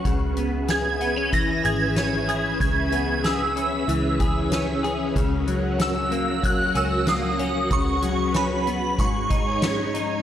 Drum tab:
HH |xxxxxxxx|xxxxxxxx|xxxxxxxx|xxxxxxxx|
SD |--o---o-|--o---o-|--o---o-|--o---o-|
BD |o---o---|o----o--|o---o---|o---oo--|